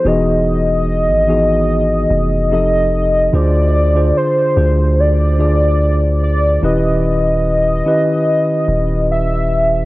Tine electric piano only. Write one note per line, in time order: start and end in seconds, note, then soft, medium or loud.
0.04 1.11 E3 medium
0.04 1.11 B3 medium
0.04 1.12 D#4 medium
0.04 1.12 F#4 medium
0.04 1.12 G#4 loud
1.27 2.51 E3 medium
1.27 2.52 B3 medium
1.27 2.51 D#4 medium
1.27 2.52 F#4 medium
1.27 2.52 G#4 medium
2.50 3.22 F3 medium
2.50 3.22 C4 medium
2.50 3.23 D#4 medium
2.50 3.23 G4 medium
2.50 3.23 A4 medium
3.32 3.86 D3 loud
3.32 3.87 D4 medium
3.32 3.87 F4 medium
3.32 3.87 G#4 medium
3.32 3.88 C5 loud
3.94 4.48 D3 medium
3.94 4.48 D4 medium
3.94 4.49 F4 medium
3.94 4.49 G#4 medium
3.94 4.49 C5 medium
4.56 5.27 D3 medium
4.56 5.28 D4 medium
4.56 5.28 F4 medium
4.56 5.28 G#4 medium
4.56 5.29 C5 medium
5.38 6.45 D3 medium
5.38 6.45 D4 medium
5.38 6.46 F4 medium
5.38 6.46 G#4 medium
5.38 6.46 D5 medium
6.61 7.68 D#3 medium
6.61 7.69 C#4 medium
6.61 7.69 E4 medium
6.61 7.69 G4 medium
6.61 7.70 B4 loud
7.85 9.28 D#3 medium
7.85 9.28 C#4 medium
7.85 9.28 E4 medium
7.85 9.28 G4 medium
7.85 9.29 B4 medium